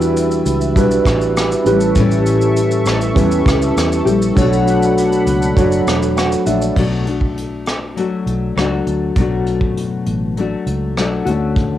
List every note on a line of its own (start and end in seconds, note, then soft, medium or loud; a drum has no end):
0.00 0.42 E2 loud
0.00 0.80 E3 medium
0.00 0.76 G3 medium
0.00 0.29 D4 loud
0.00 0.76 D4 medium
0.00 0.78 E4 medium
0.00 0.30 F#4 medium
0.00 0.30 G4 medium
0.00 0.31 B4 loud
0.00 0.78 B4 medium
0.00 1.63 B4 medium
0.00 1.65 E5 medium
0.00 shaker soft
0.17 closed hi-hat medium
0.17 shaker medium
0.31 shaker soft
0.46 0.76 C#2 loud
0.46 closed hi-hat medium
0.46 shaker medium
0.61 shaker soft
0.76 1.00 B1 loud
0.76 1.70 G3 medium
0.76 1.49 D4 medium
0.76 1.67 D4 medium
0.76 1.66 E4 medium
0.76 1.50 F#4 medium
0.76 1.50 G4 medium
0.76 1.51 B4 medium
0.76 kick medium
0.76 closed hi-hat medium
0.76 shaker medium
0.80 1.68 B4 medium
0.91 shaker medium
1.05 1.54 A1 medium
1.05 kick loud
1.05 cross-stick medium
1.05 closed hi-hat medium
1.05 shaker medium
1.21 shaker medium
1.37 cross-stick loud
1.37 closed hi-hat medium
1.37 shaker medium
1.52 shaker medium
1.64 2.62 A1 loud
1.64 2.61 C#4 medium
1.64 1.97 C#4 soft
1.64 2.62 E4 medium
1.64 2.62 G4 medium
1.64 1.96 G4 medium
1.64 6.72 A4 medium
1.64 2.63 B4 loud
1.64 4.33 E5 medium
1.64 4.34 C#6 medium
1.64 closed hi-hat medium
1.64 shaker medium
1.70 1.97 G3 soft
1.81 shaker medium
1.95 3.16 A2 medium
1.95 3.14 E3 loud
1.95 3.15 G3 medium
1.95 3.16 C#4 medium
1.95 kick loud
1.95 closed hi-hat medium
1.95 shaker medium
2.00 3.18 G4 loud
2.11 shaker soft
2.26 closed hi-hat medium
2.26 shaker medium
2.41 shaker soft
2.57 closed hi-hat medium
2.57 shaker medium
2.71 shaker soft
2.86 3.10 A1 loud
2.86 cross-stick loud
2.86 closed hi-hat medium
2.86 shaker medium
3.01 shaker medium
3.14 3.40 E2 loud
3.14 4.06 E3 medium
3.14 4.06 G3 medium
3.14 3.89 C#4 medium
3.14 4.06 C#4 medium
3.14 3.89 E4 medium
3.14 3.90 G4 medium
3.14 3.90 B4 medium
3.14 kick loud
3.14 closed hi-hat medium
3.14 shaker medium
3.19 4.04 G4 medium
3.31 shaker medium
3.46 3.70 C#2 medium
3.46 kick loud
3.46 cross-stick loud
3.46 closed hi-hat medium
3.46 shaker medium
3.62 shaker medium
3.76 4.00 E2 medium
3.76 cross-stick loud
3.76 closed hi-hat medium
3.76 shaker medium
3.92 shaker medium
4.05 4.30 A#1 loud
4.05 4.37 G3 soft
4.05 4.37 C#4 medium
4.05 4.36 G4 medium
4.05 closed hi-hat medium
4.05 shaker medium
4.22 shaker medium
4.35 5.23 B1 loud
4.35 5.56 B2 medium
4.35 5.56 F#3 medium
4.35 5.57 A3 loud
4.35 5.09 D4 medium
4.35 6.74 D4 medium
4.35 5.10 F#4 medium
4.35 5.10 A4 medium
4.35 5.11 C#5 loud
4.35 6.74 F#5 medium
4.35 6.74 B5 medium
4.35 kick loud
4.35 closed hi-hat medium
4.35 shaker medium
4.40 5.58 D4 medium
4.40 5.59 F#4 loud
4.53 shaker soft
4.68 closed hi-hat medium
4.68 shaker medium
4.82 shaker medium
4.98 closed hi-hat medium
4.98 shaker medium
5.12 shaker soft
5.27 5.51 C#2 loud
5.27 closed hi-hat medium
5.27 shaker medium
5.42 shaker soft
5.55 5.81 F#1 loud
5.55 6.77 F#3 medium
5.55 6.49 A3 medium
5.55 6.29 D4 medium
5.55 6.47 D4 medium
5.55 6.30 F#4 medium
5.55 6.30 A4 medium
5.55 6.17 C#5 medium
5.55 kick loud
5.55 closed hi-hat medium
5.55 shaker medium
5.60 6.45 F#4 medium
5.72 shaker medium
5.87 6.35 E1 medium
5.87 cross-stick loud
5.87 closed hi-hat medium
5.87 shaker medium
6.03 shaker medium
6.17 6.45 F#5 medium
6.17 cross-stick medium
6.17 closed hi-hat medium
6.17 shaker medium
6.32 shaker medium
6.46 6.70 A#1 loud
6.46 6.77 A3 soft
6.46 6.77 D4 medium
6.46 6.76 F#4 medium
6.46 6.61 E5 medium
6.46 closed hi-hat medium
6.46 shaker medium
6.62 6.90 D5 medium
6.62 shaker medium
6.76 8.22 B1 medium
6.76 7.06 B2 medium
6.76 7.07 F#3 medium
6.76 7.07 A3 medium
6.76 7.07 D4 medium
6.76 7.05 F#4 medium
6.76 kick loud
6.76 crash medium
7.06 7.98 D4 soft
7.06 7.99 F#4 soft
7.06 closed hi-hat medium
7.10 7.97 A3 soft
7.21 kick medium
7.37 closed hi-hat medium
7.66 cross-stick medium
7.66 closed hi-hat medium
7.96 8.55 F#3 medium
7.96 8.57 A3 medium
7.96 8.58 D4 medium
7.96 8.59 F#4 medium
7.96 closed hi-hat medium
8.26 8.50 B1 medium
8.26 closed hi-hat medium
8.55 8.80 C#2 medium
8.55 9.16 F#3 medium
8.55 9.18 A3 medium
8.55 9.19 D4 medium
8.55 9.21 F#4 medium
8.55 cross-stick medium
8.55 closed hi-hat medium
8.87 9.11 D2 medium
8.87 closed hi-hat medium
9.16 9.76 B1 medium
9.16 10.36 B2 medium
9.16 10.36 F#3 medium
9.16 10.38 A3 medium
9.16 kick medium
9.16 closed hi-hat medium
9.20 10.39 D4 medium
9.20 10.40 F#4 medium
9.46 closed hi-hat medium
9.61 kick medium
9.76 10.00 F#1 medium
9.76 closed hi-hat medium
10.06 10.54 A1 medium
10.06 closed hi-hat medium
10.37 10.97 F#3 medium
10.37 10.98 A3 medium
10.37 10.99 D4 medium
10.37 10.99 F#4 medium
10.37 closed hi-hat medium
10.66 10.96 C#2 medium
10.66 closed hi-hat medium
10.96 11.20 B1 medium
10.96 11.27 F#3 medium
10.96 11.27 A3 medium
10.96 11.27 D4 medium
10.96 11.24 F#4 medium
10.96 cross-stick medium
10.96 closed hi-hat medium
11.25 11.78 D2 medium
11.25 11.78 A3 medium
11.25 11.78 C#4 medium
11.25 11.78 F#4 medium
11.25 closed hi-hat medium
11.30 11.78 D3 medium
11.56 kick loud
11.56 closed hi-hat medium